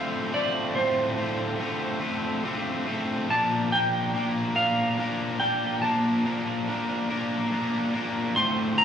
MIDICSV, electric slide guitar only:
0, 0, Header, 1, 2, 480
1, 0, Start_track
1, 0, Tempo, 846143
1, 426, Time_signature, 6, 3, 24, 8
1, 5018, End_track
2, 0, Start_track
2, 0, Title_t, "Electric slide guitar"
2, 0, Program_c, 0, 29
2, 0, Note_on_c, 0, 77, 101
2, 193, Note_on_c, 0, 74, 93
2, 203, Note_off_c, 0, 77, 0
2, 425, Note_on_c, 0, 72, 78
2, 437, Note_off_c, 0, 74, 0
2, 1363, Note_off_c, 0, 72, 0
2, 1875, Note_on_c, 0, 81, 113
2, 2094, Note_off_c, 0, 81, 0
2, 2112, Note_on_c, 0, 79, 108
2, 2584, Note_off_c, 0, 79, 0
2, 2586, Note_on_c, 0, 77, 92
2, 3059, Note_off_c, 0, 77, 0
2, 3061, Note_on_c, 0, 79, 97
2, 3298, Note_off_c, 0, 79, 0
2, 3300, Note_on_c, 0, 81, 88
2, 4241, Note_off_c, 0, 81, 0
2, 4743, Note_on_c, 0, 84, 111
2, 4978, Note_off_c, 0, 84, 0
2, 4981, Note_on_c, 0, 82, 112
2, 5018, Note_off_c, 0, 82, 0
2, 5018, End_track
0, 0, End_of_file